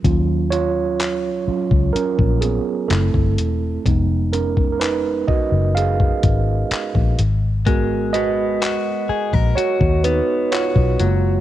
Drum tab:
HH |x-x-x---x-x-x-x-|x-x-x---x-x-x-x-|x-x-x---x-x-x-x-|
CP |----x-------x---|----x-------x---|----x-------x---|
BD |o------o-o---o--|o--o--o--oo--o--|o------o-o---o--|